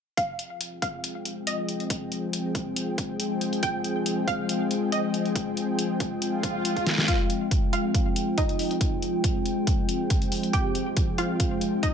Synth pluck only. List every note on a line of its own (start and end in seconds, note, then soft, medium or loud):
0.17 0.74 F5 medium
0.82 1.39 F5 medium
1.47 3.55 D#5 medium
3.63 4.20 G5 medium
4.28 4.84 F5 medium
4.92 7.00 D#5 medium
7.08 7.65 F4 medium
7.08 7.65 F5 loud
7.73 8.30 F4 medium
7.73 8.30 F5 medium
8.38 10.45 D#4 medium
8.38 10.45 D#5 medium
10.53 11.10 G4 medium
10.53 11.10 G5 loud
11.18 11.75 F4 medium
11.18 11.75 F5 medium
11.83 11.94 D#4 medium
11.83 11.94 D#5 loud